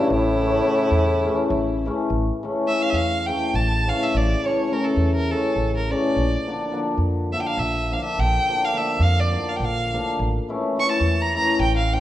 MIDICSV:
0, 0, Header, 1, 5, 480
1, 0, Start_track
1, 0, Tempo, 576369
1, 87, Time_signature, 7, 3, 24, 8
1, 9994, End_track
2, 0, Start_track
2, 0, Title_t, "Violin"
2, 0, Program_c, 0, 40
2, 0, Note_on_c, 0, 64, 74
2, 95, Note_off_c, 0, 64, 0
2, 95, Note_on_c, 0, 64, 87
2, 1555, Note_off_c, 0, 64, 0
2, 2230, Note_on_c, 0, 76, 87
2, 2349, Note_on_c, 0, 77, 89
2, 2362, Note_off_c, 0, 76, 0
2, 2413, Note_on_c, 0, 76, 86
2, 2426, Note_off_c, 0, 77, 0
2, 2450, Note_on_c, 0, 77, 86
2, 2463, Note_off_c, 0, 76, 0
2, 2716, Note_on_c, 0, 79, 80
2, 2729, Note_off_c, 0, 77, 0
2, 2958, Note_on_c, 0, 81, 89
2, 2971, Note_off_c, 0, 79, 0
2, 3245, Note_on_c, 0, 77, 85
2, 3257, Note_off_c, 0, 81, 0
2, 3361, Note_on_c, 0, 76, 84
2, 3374, Note_off_c, 0, 77, 0
2, 3471, Note_on_c, 0, 74, 87
2, 3483, Note_off_c, 0, 76, 0
2, 3712, Note_on_c, 0, 73, 75
2, 3724, Note_off_c, 0, 74, 0
2, 3940, Note_on_c, 0, 70, 81
2, 3953, Note_off_c, 0, 73, 0
2, 4035, Note_on_c, 0, 69, 71
2, 4048, Note_off_c, 0, 70, 0
2, 4280, Note_off_c, 0, 69, 0
2, 4290, Note_on_c, 0, 70, 80
2, 4424, Note_on_c, 0, 69, 75
2, 4436, Note_off_c, 0, 70, 0
2, 4782, Note_off_c, 0, 69, 0
2, 4803, Note_on_c, 0, 70, 68
2, 4916, Note_on_c, 0, 74, 71
2, 4929, Note_off_c, 0, 70, 0
2, 5604, Note_off_c, 0, 74, 0
2, 6104, Note_on_c, 0, 76, 83
2, 6175, Note_off_c, 0, 76, 0
2, 6180, Note_on_c, 0, 79, 53
2, 6217, Note_on_c, 0, 77, 85
2, 6230, Note_off_c, 0, 79, 0
2, 6324, Note_on_c, 0, 76, 82
2, 6337, Note_off_c, 0, 77, 0
2, 6607, Note_on_c, 0, 77, 75
2, 6620, Note_off_c, 0, 76, 0
2, 6697, Note_off_c, 0, 77, 0
2, 6702, Note_on_c, 0, 76, 82
2, 6828, Note_on_c, 0, 79, 97
2, 6840, Note_off_c, 0, 76, 0
2, 7204, Note_on_c, 0, 77, 86
2, 7216, Note_off_c, 0, 79, 0
2, 7304, Note_on_c, 0, 76, 82
2, 7317, Note_off_c, 0, 77, 0
2, 7516, Note_on_c, 0, 77, 94
2, 7529, Note_off_c, 0, 76, 0
2, 7660, Note_on_c, 0, 74, 80
2, 7673, Note_off_c, 0, 77, 0
2, 7906, Note_on_c, 0, 77, 66
2, 7919, Note_off_c, 0, 74, 0
2, 7966, Note_on_c, 0, 79, 51
2, 7978, Note_off_c, 0, 77, 0
2, 8033, Note_on_c, 0, 77, 81
2, 8046, Note_off_c, 0, 79, 0
2, 8404, Note_off_c, 0, 77, 0
2, 8989, Note_on_c, 0, 85, 105
2, 9072, Note_off_c, 0, 85, 0
2, 9088, Note_on_c, 0, 81, 79
2, 9338, Note_on_c, 0, 82, 90
2, 9351, Note_off_c, 0, 81, 0
2, 9462, Note_off_c, 0, 82, 0
2, 9470, Note_on_c, 0, 82, 94
2, 9663, Note_off_c, 0, 82, 0
2, 9676, Note_on_c, 0, 79, 88
2, 9796, Note_off_c, 0, 79, 0
2, 9801, Note_on_c, 0, 77, 72
2, 9945, Note_on_c, 0, 79, 82
2, 9957, Note_off_c, 0, 77, 0
2, 9994, Note_off_c, 0, 79, 0
2, 9994, End_track
3, 0, Start_track
3, 0, Title_t, "Hammered dulcimer"
3, 0, Program_c, 1, 15
3, 0, Note_on_c, 1, 49, 66
3, 0, Note_on_c, 1, 52, 64
3, 317, Note_off_c, 1, 49, 0
3, 323, Note_off_c, 1, 52, 0
3, 327, Note_on_c, 1, 49, 60
3, 333, Note_on_c, 1, 52, 68
3, 344, Note_on_c, 1, 57, 66
3, 347, Note_on_c, 1, 61, 78
3, 501, Note_off_c, 1, 57, 0
3, 502, Note_off_c, 1, 61, 0
3, 528, Note_off_c, 1, 49, 0
3, 534, Note_off_c, 1, 52, 0
3, 538, Note_on_c, 1, 49, 67
3, 544, Note_on_c, 1, 52, 54
3, 550, Note_on_c, 1, 57, 55
3, 551, Note_on_c, 1, 61, 76
3, 710, Note_off_c, 1, 57, 0
3, 710, Note_off_c, 1, 61, 0
3, 1024, Note_off_c, 1, 49, 0
3, 1033, Note_off_c, 1, 52, 0
3, 1034, Note_on_c, 1, 49, 75
3, 1043, Note_on_c, 1, 52, 76
3, 1047, Note_on_c, 1, 57, 69
3, 1054, Note_on_c, 1, 61, 88
3, 1212, Note_off_c, 1, 57, 0
3, 1215, Note_off_c, 1, 61, 0
3, 1534, Note_off_c, 1, 49, 0
3, 1541, Note_off_c, 1, 52, 0
3, 1544, Note_on_c, 1, 49, 83
3, 1551, Note_on_c, 1, 52, 76
3, 1552, Note_on_c, 1, 57, 76
3, 1563, Note_on_c, 1, 61, 97
3, 1716, Note_off_c, 1, 57, 0
3, 1721, Note_off_c, 1, 61, 0
3, 1815, Note_off_c, 1, 49, 0
3, 1815, Note_off_c, 1, 52, 0
3, 2022, Note_on_c, 1, 49, 75
3, 2025, Note_on_c, 1, 52, 63
3, 2036, Note_on_c, 1, 57, 75
3, 2036, Note_on_c, 1, 61, 76
3, 2189, Note_off_c, 1, 57, 0
3, 2189, Note_off_c, 1, 61, 0
3, 2208, Note_off_c, 1, 49, 0
3, 2218, Note_on_c, 1, 49, 62
3, 2220, Note_off_c, 1, 52, 0
3, 2230, Note_on_c, 1, 52, 55
3, 2232, Note_on_c, 1, 61, 61
3, 2235, Note_on_c, 1, 57, 51
3, 2393, Note_off_c, 1, 61, 0
3, 2395, Note_off_c, 1, 57, 0
3, 2703, Note_off_c, 1, 49, 0
3, 2712, Note_off_c, 1, 52, 0
3, 2713, Note_on_c, 1, 49, 49
3, 2722, Note_on_c, 1, 52, 50
3, 2727, Note_on_c, 1, 57, 57
3, 2739, Note_on_c, 1, 61, 57
3, 2894, Note_off_c, 1, 57, 0
3, 2900, Note_off_c, 1, 61, 0
3, 3204, Note_off_c, 1, 49, 0
3, 3214, Note_on_c, 1, 49, 66
3, 3216, Note_off_c, 1, 52, 0
3, 3226, Note_on_c, 1, 52, 57
3, 3231, Note_on_c, 1, 57, 58
3, 3233, Note_on_c, 1, 61, 66
3, 3397, Note_off_c, 1, 57, 0
3, 3398, Note_off_c, 1, 61, 0
3, 3685, Note_off_c, 1, 49, 0
3, 3686, Note_off_c, 1, 52, 0
3, 3695, Note_on_c, 1, 49, 67
3, 3696, Note_on_c, 1, 52, 55
3, 3700, Note_on_c, 1, 57, 59
3, 3706, Note_on_c, 1, 61, 69
3, 3863, Note_off_c, 1, 57, 0
3, 3866, Note_off_c, 1, 61, 0
3, 3892, Note_off_c, 1, 49, 0
3, 3900, Note_off_c, 1, 52, 0
3, 3902, Note_on_c, 1, 49, 68
3, 3910, Note_on_c, 1, 52, 57
3, 3920, Note_on_c, 1, 61, 75
3, 3921, Note_on_c, 1, 57, 53
3, 4079, Note_off_c, 1, 61, 0
3, 4080, Note_off_c, 1, 57, 0
3, 4403, Note_off_c, 1, 49, 0
3, 4403, Note_off_c, 1, 52, 0
3, 4412, Note_on_c, 1, 49, 65
3, 4414, Note_on_c, 1, 52, 52
3, 4425, Note_on_c, 1, 57, 52
3, 4427, Note_on_c, 1, 61, 60
3, 4585, Note_off_c, 1, 57, 0
3, 4586, Note_off_c, 1, 61, 0
3, 4900, Note_off_c, 1, 49, 0
3, 4907, Note_off_c, 1, 52, 0
3, 4910, Note_on_c, 1, 49, 62
3, 4917, Note_on_c, 1, 52, 62
3, 4928, Note_on_c, 1, 57, 63
3, 4931, Note_on_c, 1, 61, 72
3, 5087, Note_off_c, 1, 57, 0
3, 5088, Note_off_c, 1, 61, 0
3, 5181, Note_off_c, 1, 49, 0
3, 5181, Note_off_c, 1, 52, 0
3, 5386, Note_on_c, 1, 50, 63
3, 5391, Note_on_c, 1, 53, 59
3, 5397, Note_on_c, 1, 58, 56
3, 5401, Note_on_c, 1, 62, 80
3, 5552, Note_off_c, 1, 58, 0
3, 5554, Note_off_c, 1, 62, 0
3, 5586, Note_off_c, 1, 50, 0
3, 5591, Note_off_c, 1, 53, 0
3, 5596, Note_on_c, 1, 50, 78
3, 5601, Note_on_c, 1, 53, 71
3, 5603, Note_on_c, 1, 58, 65
3, 5609, Note_on_c, 1, 62, 88
3, 5761, Note_off_c, 1, 58, 0
3, 5764, Note_off_c, 1, 62, 0
3, 6090, Note_off_c, 1, 50, 0
3, 6091, Note_off_c, 1, 53, 0
3, 6099, Note_on_c, 1, 50, 56
3, 6101, Note_on_c, 1, 53, 61
3, 6106, Note_on_c, 1, 58, 59
3, 6110, Note_on_c, 1, 62, 64
3, 6265, Note_off_c, 1, 58, 0
3, 6267, Note_off_c, 1, 62, 0
3, 6588, Note_off_c, 1, 50, 0
3, 6588, Note_off_c, 1, 53, 0
3, 6595, Note_on_c, 1, 50, 64
3, 6598, Note_on_c, 1, 53, 59
3, 6600, Note_on_c, 1, 58, 59
3, 6609, Note_on_c, 1, 62, 75
3, 6761, Note_off_c, 1, 58, 0
3, 6766, Note_off_c, 1, 62, 0
3, 7045, Note_off_c, 1, 50, 0
3, 7055, Note_on_c, 1, 50, 57
3, 7060, Note_off_c, 1, 53, 0
3, 7069, Note_on_c, 1, 53, 61
3, 7069, Note_on_c, 1, 58, 64
3, 7071, Note_on_c, 1, 62, 63
3, 7226, Note_off_c, 1, 58, 0
3, 7227, Note_off_c, 1, 62, 0
3, 7256, Note_off_c, 1, 50, 0
3, 7258, Note_off_c, 1, 53, 0
3, 7266, Note_on_c, 1, 50, 53
3, 7268, Note_on_c, 1, 53, 57
3, 7274, Note_on_c, 1, 58, 61
3, 7279, Note_on_c, 1, 62, 72
3, 7435, Note_off_c, 1, 58, 0
3, 7437, Note_off_c, 1, 62, 0
3, 7744, Note_off_c, 1, 50, 0
3, 7746, Note_off_c, 1, 53, 0
3, 7753, Note_on_c, 1, 50, 51
3, 7756, Note_on_c, 1, 53, 54
3, 7764, Note_on_c, 1, 58, 53
3, 7769, Note_on_c, 1, 62, 73
3, 7932, Note_off_c, 1, 58, 0
3, 7934, Note_off_c, 1, 62, 0
3, 8255, Note_off_c, 1, 50, 0
3, 8263, Note_off_c, 1, 53, 0
3, 8265, Note_on_c, 1, 50, 59
3, 8273, Note_on_c, 1, 53, 64
3, 8278, Note_on_c, 1, 58, 66
3, 8282, Note_on_c, 1, 62, 82
3, 8438, Note_off_c, 1, 58, 0
3, 8440, Note_off_c, 1, 62, 0
3, 8535, Note_off_c, 1, 50, 0
3, 8535, Note_off_c, 1, 53, 0
3, 8731, Note_on_c, 1, 52, 75
3, 8737, Note_on_c, 1, 57, 74
3, 8740, Note_on_c, 1, 64, 83
3, 8744, Note_on_c, 1, 61, 75
3, 8898, Note_off_c, 1, 57, 0
3, 8899, Note_off_c, 1, 64, 0
3, 8901, Note_off_c, 1, 61, 0
3, 8945, Note_off_c, 1, 52, 0
3, 8955, Note_on_c, 1, 52, 65
3, 8964, Note_on_c, 1, 57, 66
3, 8965, Note_on_c, 1, 61, 59
3, 8971, Note_on_c, 1, 64, 64
3, 9117, Note_off_c, 1, 57, 0
3, 9117, Note_off_c, 1, 61, 0
3, 9120, Note_off_c, 1, 64, 0
3, 9425, Note_off_c, 1, 52, 0
3, 9435, Note_on_c, 1, 52, 65
3, 9445, Note_on_c, 1, 57, 59
3, 9450, Note_on_c, 1, 61, 57
3, 9456, Note_on_c, 1, 64, 73
3, 9608, Note_off_c, 1, 57, 0
3, 9611, Note_off_c, 1, 61, 0
3, 9614, Note_off_c, 1, 64, 0
3, 9917, Note_off_c, 1, 52, 0
3, 9927, Note_on_c, 1, 52, 67
3, 9930, Note_on_c, 1, 57, 53
3, 9938, Note_on_c, 1, 61, 64
3, 9944, Note_on_c, 1, 64, 72
3, 9994, Note_off_c, 1, 52, 0
3, 9994, Note_off_c, 1, 57, 0
3, 9994, Note_off_c, 1, 61, 0
3, 9994, Note_off_c, 1, 64, 0
3, 9994, End_track
4, 0, Start_track
4, 0, Title_t, "Bassoon"
4, 0, Program_c, 2, 70
4, 0, Note_on_c, 2, 43, 88
4, 110, Note_on_c, 2, 45, 109
4, 122, Note_off_c, 2, 43, 0
4, 1562, Note_off_c, 2, 45, 0
4, 9994, End_track
5, 0, Start_track
5, 0, Title_t, "Upright bass"
5, 0, Program_c, 3, 32
5, 86, Note_on_c, 3, 33, 94
5, 495, Note_off_c, 3, 33, 0
5, 761, Note_on_c, 3, 40, 92
5, 1064, Note_off_c, 3, 40, 0
5, 1254, Note_on_c, 3, 33, 99
5, 1561, Note_off_c, 3, 33, 0
5, 1750, Note_on_c, 3, 33, 88
5, 1909, Note_off_c, 3, 33, 0
5, 2437, Note_on_c, 3, 40, 74
5, 2743, Note_off_c, 3, 40, 0
5, 2945, Note_on_c, 3, 33, 93
5, 3250, Note_off_c, 3, 33, 0
5, 3453, Note_on_c, 3, 33, 96
5, 3606, Note_off_c, 3, 33, 0
5, 4133, Note_on_c, 3, 40, 78
5, 4435, Note_off_c, 3, 40, 0
5, 4627, Note_on_c, 3, 33, 83
5, 4932, Note_off_c, 3, 33, 0
5, 5131, Note_on_c, 3, 34, 86
5, 5285, Note_off_c, 3, 34, 0
5, 5811, Note_on_c, 3, 41, 77
5, 6113, Note_off_c, 3, 41, 0
5, 6310, Note_on_c, 3, 34, 91
5, 6612, Note_off_c, 3, 34, 0
5, 6816, Note_on_c, 3, 34, 84
5, 6968, Note_off_c, 3, 34, 0
5, 7490, Note_on_c, 3, 41, 83
5, 7791, Note_off_c, 3, 41, 0
5, 7993, Note_on_c, 3, 34, 93
5, 8293, Note_off_c, 3, 34, 0
5, 8487, Note_on_c, 3, 33, 96
5, 8640, Note_off_c, 3, 33, 0
5, 9162, Note_on_c, 3, 40, 83
5, 9463, Note_off_c, 3, 40, 0
5, 9653, Note_on_c, 3, 33, 82
5, 9956, Note_off_c, 3, 33, 0
5, 9994, End_track
0, 0, End_of_file